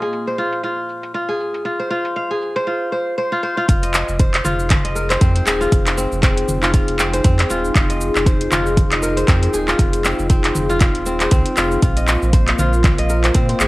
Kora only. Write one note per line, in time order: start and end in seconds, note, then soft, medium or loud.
0.00 0.38 F4 medium
0.00 1.28 G#4 medium
0.00 0.58 D#5 loud
0.00 0.11 F5 medium
0.27 1.46 C5 medium
0.38 0.63 F4 medium
0.64 1.14 F4 medium
1.14 1.65 F4 medium
1.29 2.30 G#4 medium
1.65 1.90 F4 medium
1.80 2.56 C5 medium
1.91 2.66 F4 loud
2.16 3.16 F5 medium
2.31 3.67 G#4 medium
2.56 2.92 C5 loud
2.67 3.32 F4 medium
2.92 3.17 C5 medium
3.18 3.43 C5 loud
3.32 3.57 F4 medium
3.43 4.19 C5 medium
3.57 3.68 F4 loud
3.68 4.44 F4 medium
3.83 4.84 D#5 medium
4.19 5.10 C5 medium
4.45 5.60 F4 loud
4.84 5.92 D#5 medium
4.95 6.23 A#4 medium
5.10 5.35 C5 medium
5.21 5.97 C4 loud
5.35 6.54 C5 medium
5.46 6.83 G#4 medium
5.61 6.62 F4 loud
5.97 6.22 C4 medium
6.23 6.99 C4 loud
6.62 6.73 F4 loud
6.74 7.50 F4 medium
6.99 7.24 C4 medium
7.14 8.26 C5 medium
7.24 9.04 C4 loud
7.50 7.75 F4 loud
7.75 8.51 F4 medium
7.90 8.91 D#5 medium
8.26 9.16 C5 medium
8.51 9.68 F4 loud
8.92 9.99 D#5 medium
9.03 10.30 A#4 medium
9.17 9.42 C5 medium
9.28 10.04 C4 loud
9.42 10.61 C5 medium
9.53 10.90 G#4 medium
9.68 10.69 F4 loud
10.05 10.29 C4 medium
10.30 11.06 C4 loud
10.70 10.80 F4 loud
10.81 11.57 F4 medium
11.06 11.31 C4 medium
11.21 12.33 C5 medium
11.32 13.12 C4 loud
11.57 11.82 F4 loud
11.83 12.58 F4 medium
11.97 12.98 D#5 medium
12.33 13.24 C5 medium
12.59 13.68 F4 loud
12.99 13.68 D#5 medium
13.10 13.68 A#4 medium
13.24 13.49 C5 medium
13.35 13.68 C4 loud
13.49 13.68 C5 medium
13.60 13.68 G#4 medium